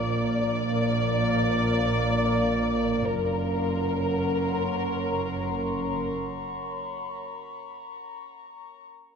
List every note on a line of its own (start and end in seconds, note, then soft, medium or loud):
0.03 3.06 A#1 soft
0.03 3.06 A#2 soft
0.03 3.06 A#4 soft
0.03 3.06 D5 soft
0.03 3.07 D5 soft
0.03 3.06 F5 soft
3.09 6.12 F#1 soft
3.09 6.12 F#2 soft
3.09 6.12 A#4 soft
3.09 6.13 A#4 soft
3.09 6.16 C#5 soft
3.09 6.16 F#5 soft
3.09 8.88 A#5 soft
3.09 6.98 C6 soft
4.32 8.88 C#6 soft
6.98 8.26 B5 soft